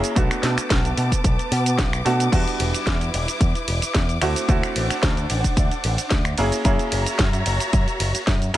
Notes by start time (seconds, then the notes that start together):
Already playing: A#3 C#4 E4 F#4 G#4 C#5 E5 A#5
0.04 closed hi-hat, shaker
0.15 B1 A3 B3 D4 F#4 B4 A5 D6, kick, closed hi-hat, shaker
0.31 finger snap, closed hi-hat, shaker
0.43 B2, snare, open hi-hat
0.58 finger snap, muted picked electric bass stroke, closed hi-hat, shaker
0.70 B1, kick, snare, closed hi-hat, shaker
0.85 closed hi-hat, shaker
0.97 B2, open hi-hat
1.12 kick, closed hi-hat, shaker
1.24 B1, kick, closed hi-hat, shaker
1.39 closed hi-hat, shaker
1.52 B2, open hi-hat
1.66 closed hi-hat, shaker
1.78 B1, kick, snare, closed hi-hat, shaker
1.93 finger snap, closed hi-hat, shaker
2.05 B2 A3 B3 D4 F#4, open hi-hat
2.20 closed hi-hat, shaker
2.32 E2 G3 B3 D4 E4 F#4 B4, kick, closed hi-hat, crash, shaker
2.48 closed hi-hat, shaker
2.60 E1, open hi-hat, ride
2.74 muted picked electric bass stroke, closed hi-hat, shaker
2.87 E2, kick, snare, closed hi-hat, shaker
3.01 closed hi-hat, shaker
3.14 E1, open hi-hat, ride
3.28 closed hi-hat, shaker
3.41 E2, kick, closed hi-hat, shaker
3.55 closed hi-hat, shaker
3.68 E1, open hi-hat, ride
3.82 muted picked electric bass stroke, closed hi-hat, shaker
3.94 E2, kick, snare, closed hi-hat, shaker
4.09 closed hi-hat, shaker
4.22 D2 A3 C4 D4 E4 F#4 C5 F#5, finger snap, open hi-hat, ride
4.36 closed hi-hat, shaker
4.49 D2 A3 C4 E4 F#4, kick, closed hi-hat, shaker
4.63 finger snap, closed hi-hat, shaker
4.76 A1, open hi-hat, ride
4.90 finger snap, closed hi-hat, shaker
5.03 D2, kick, snare, closed hi-hat, shaker
5.17 closed hi-hat, shaker
5.30 A1, open hi-hat, ride
5.44 kick, closed hi-hat, shaker
5.57 D2, kick, closed hi-hat, shaker
5.71 closed hi-hat, shaker
5.84 A1, open hi-hat, ride
5.98 muted picked electric bass stroke, closed hi-hat, shaker
6.10 D2, kick, snare, closed hi-hat, shaker
6.25 finger snap, closed hi-hat, shaker
6.38 F#1 A#3 C#4 E4 F#4 G#4 C#5 E5 A#5, open hi-hat, ride
6.52 closed hi-hat, shaker
6.65 F#2 A#3 C#4 E4 G#4, kick, closed hi-hat, shaker
6.79 closed hi-hat, shaker
6.92 F#1, open hi-hat, ride
7.06 muted picked electric bass stroke, closed hi-hat, shaker
7.19 F#2, kick, snare, closed hi-hat, shaker
7.33 closed hi-hat, shaker
7.46 F#1, open hi-hat, ride
7.60 closed hi-hat, shaker
7.73 F#2, kick, closed hi-hat, shaker
7.88 closed hi-hat, shaker
8.00 F#1, open hi-hat, ride
8.15 muted picked electric bass stroke, closed hi-hat, shaker
8.27 F#2, kick, snare, closed hi-hat, shaker
8.42 closed hi-hat, shaker
8.54 A#3